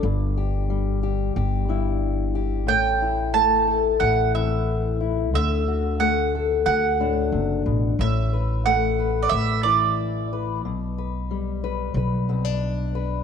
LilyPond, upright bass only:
\new Staff \with { instrumentName = "Upright bass" } { \clef bass \time 4/4 \key a \dorian \tempo 4 = 91 g,,2 g,,2 | a,,2 a,,2 | d,2 d,4 fis,,8 a,,8 | a,,2 a,,2 |
b,,2 b,,2 | }